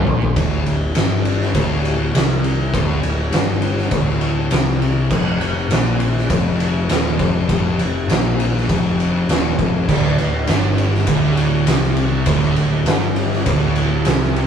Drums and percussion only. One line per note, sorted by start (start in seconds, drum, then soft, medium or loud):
0.07 floor tom loud
0.22 floor tom loud
0.36 kick loud
0.36 ride loud
0.66 ride medium
0.95 snare loud
0.95 ride loud
1.25 ride medium
1.41 snare soft
1.55 kick loud
1.55 ride loud
1.85 ride medium
2.15 snare loud
2.15 ride loud
2.44 ride medium
2.74 kick loud
2.74 ride loud
3.03 ride medium
3.33 snare loud
3.33 ride medium
3.62 ride medium
3.78 snare soft
3.91 kick loud
3.91 ride medium
4.21 ride medium
4.51 snare loud
4.51 ride loud
4.82 ride medium
5.10 kick loud
5.10 crash loud
5.41 ride medium
5.71 snare loud
5.71 ride loud
6.00 ride medium
6.17 snare soft
6.30 kick loud
6.30 ride loud
6.60 ride medium
6.89 snare loud
6.89 ride loud
7.19 kick loud
7.19 ride medium
7.49 kick loud
7.49 ride medium
7.79 ride medium
8.10 snare loud
8.10 ride loud
8.40 ride medium
8.57 snare soft
8.69 kick loud
8.69 ride medium
9.00 ride medium
9.29 snare loud
9.29 ride medium
9.59 kick loud
9.59 ride medium
9.89 kick loud
9.89 crash loud
10.18 ride medium
10.47 snare loud
10.47 ride medium
10.78 ride medium
10.94 snare soft
11.07 kick loud
11.07 ride loud
11.37 ride medium
11.67 snare loud
11.67 ride loud
11.84 snare soft
11.96 ride medium
12.26 kick loud
12.26 ride loud
12.56 ride medium
12.86 snare loud
12.86 ride medium
13.16 ride medium
13.32 snare soft
13.46 kick loud
13.46 ride loud
13.76 ride medium
14.05 snare loud
14.05 ride medium
14.23 snare soft
14.36 ride medium